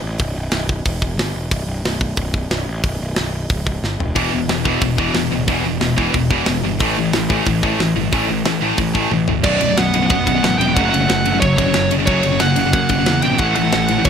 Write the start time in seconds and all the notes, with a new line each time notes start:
0.02 A1
0.19 B0, kick, open hi-hat
0.36 B0
0.51 B0, snare, open hi-hat
0.69 kick
0.85 E1, kick, open hi-hat
1.02 kick
1.17 G1, snare, open hi-hat
1.35 E1
1.51 B0, kick, open hi-hat
1.67 B0
1.84 B0, snare, open hi-hat
2.01 kick
2.16 B0, kick, open hi-hat
2.34 kick
2.51 B0, snare, open hi-hat
2.68 A1
2.84 B0, kick, open hi-hat
3.01 B0
3.16 B0, snare, open hi-hat
3.50 C#1, kick, open hi-hat
3.67 kick
3.83 G1, snare
4.00 E1, floor tom
4.15 E1 E2 B2 E3, kick, open hi-hat, splash
4.33 E1 E2 B2
4.49 E1 E2 B2, snare, open hi-hat
4.64 E2 B2 E3, kick
4.81 E1 E2 B2, kick, open hi-hat
4.97 E2 B2 E3, kick
5.14 E1 E2 B2, snare, open hi-hat
5.31 D1 E2 B2
5.48 E1 E2 B2 E3, kick, open hi-hat
5.64 E1 E2 B2
5.81 E1 E2 B2, snare, open hi-hat
5.97 E2 B2 E3, kick
6.14 E1 E2 B2, kick, open hi-hat
6.30 E2 B2 E3, kick
6.46 E1 E2 B2, snare, open hi-hat
6.64 G1 E2 B2
6.79 A1 A2 E3 A3, kick, open hi-hat
6.97 A1 A2 E3
7.13 A1 A2 E3, snare, open hi-hat
7.29 A2 E3 A3, kick
7.45 A1 A2 E3, kick, open hi-hat
7.63 A2 E3 A3, kick
7.80 A1 A2 E3, snare, open hi-hat
7.96 G1 A2 E3
8.12 A1 A2 E3 A3, kick, open hi-hat
8.29 A1 A2 E3
8.44 A1 A2 E3, snare, open hi-hat
8.62 A2 E3 A3
8.78 A1 A2 E3, kick, open hi-hat
8.93 A2 E3 A3, kick
9.11 A1 A2 E3, high tom
9.27 G1 A2 E3, floor tom
9.43 B0 B1 F#2 B2 F#3 D5, kick, crash
9.61 B0 B1 F#2, ride
9.70 B1 F#2
9.77 B0 B1 F#2 B3 F#5, snare, ride
9.94 B0 B1 F#2, ride
10.02 B1 F#2
10.06 F#5, kick, ride
10.10 B1 F#2 B3
10.26 B0 B1 F#2, kick, ride
10.34 B1 F#2
10.43 A1 B1 F#2, snare, ride
10.59 E1 B1 F#2 B3 G5, ride
10.68 B1 F#2
10.74 F#1 F#2 C#3 F#3 A3 F#5, kick, ride
10.89 F#2 C#3 A3 F#5
10.94 F#1, ride
11.00 F#2 C#3
11.09 F#1 F#2 C#3, snare, ride
11.26 F#2 C#3, ride
11.33 F#2 C#3
11.40 F#1 F#2 C#3 F#3 C#5, kick, ride
11.57 F#1 F#2 C#3 F#3 C#5, kick, ride
11.66 F#2 C#3
11.74 F#1 F#2 C#3, snare, ride
11.91 F#2 C#3, ride
11.99 F#2 C#3
12.05 F#1 F#2 C#3 F#3 C#5, kick, ride
12.23 F#1 F#2 C#3, ride
12.31 F#2 C#3
12.39 F#1 F#2 C#3 A#3 F#5, snare, ride
12.56 F#1 F#2 C#3, ride
12.65 F#2 C#3
12.73 F#2 C#3 A#3 F#5, kick, ride
12.89 F#1 F#2 C#3, kick, ride
12.99 F#2 C#3
13.06 E2 F#2 C#3, snare, ride
13.22 A#1 F#2 C#3 B3 G5, ride
13.31 F#2 C#3
13.38 A1 A2 E3 A3 F#5, kick, ride
13.55 A1 A2 E3 A3 F#5, ride
13.64 A2 E3
13.72 A1 A2 E3, snare, ride
13.88 A2 E3, ride
13.98 A2 E3
14.05 A1 A2 E3 C#5, kick, ride